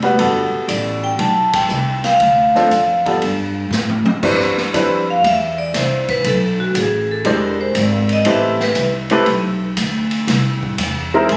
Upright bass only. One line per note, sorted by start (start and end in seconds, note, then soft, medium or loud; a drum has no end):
0.00 0.17 F1 medium
0.18 0.50 G1 medium
0.52 muted upright bass stroke soft
0.68 1.18 A1 medium
1.19 1.68 B1 medium
1.69 2.18 C2 medium
2.20 2.69 D2 medium
2.71 3.20 F2 medium
3.21 3.70 G2 medium
3.71 4.03 A2 medium
4.07 muted upright bass stroke soft
4.23 4.71 G2 medium
4.73 5.22 F2 medium
5.24 5.73 E2 medium
5.74 6.23 C2 medium
6.24 6.73 B1 medium
6.74 7.23 A1 medium
7.25 7.74 E1 medium
7.75 8.24 G#1 medium
8.25 8.75 A1 medium
8.76 9.25 C2 medium
9.26 9.75 B1 medium
9.77 10.26 D2 medium
10.27 10.77 C2 medium
10.78 11.27 E2 medium
11.29 11.37 G#2 medium